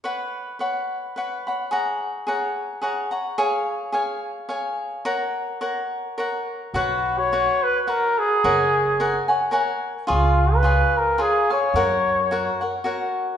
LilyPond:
<<
  \new Staff \with { instrumentName = "Cavaquinho" } { \time 3/4 \key fis \mixolydian \tempo 4 = 108 <b' cis'' fis'' b''>4 <b' cis'' fis'' b''>4 <b' cis'' fis'' b''>8 <cis'' fis'' b''>8 | <gis' cis'' fis'' ais''>4 <gis' cis'' fis'' ais''>4 <gis' cis'' fis'' ais''>8 <cis'' fis'' ais''>8 | <gis' cis'' eis'' gis''>4 <gis' cis'' eis'' gis''>4 <gis' cis'' eis'' gis''>4 | <ais' cis'' fis'' ais''>4 <ais' cis'' fis'' ais''>4 <ais' cis'' fis'' ais''>4 |
<fis' b' cis'' fis''>4 <fis' b' cis'' fis''>4 <fis' b' cis'' fis''>4 | <ais' cis'' fis'' gis''>4 <ais' cis'' fis'' gis''>8 <cis'' fis'' gis''>8 <ais' cis'' fis'' gis''>4 | <eis' gis' cis'' eis''>4 <eis' gis' cis'' eis''>4 <eis' gis' cis'' eis''>8 <gis' cis'' eis''>8 | <fis' ais' cis'' fis''>4 <fis' ais' cis'' fis''>8 <ais' cis'' fis''>8 <fis' ais' cis'' fis''>4 | }
  \new Staff \with { instrumentName = "Trumpet" } { \time 3/4 \key fis \mixolydian r2. | r2. | r2. | r2. |
fis'8. cis''8. b'16. b'32 ais'8 gis'8~ | gis'4. r4. | eis'8. b'8. ais'8 gis'8 cis''8~ | cis''4. r4. | }
  \new Staff \with { instrumentName = "Upright bass" } { \clef bass \time 3/4 \key fis \mixolydian r2. | r2. | r2. | r2. |
b,,2 r4 | fis,,2 r4 | cis,2 r4 | fis,2 r4 | }
>>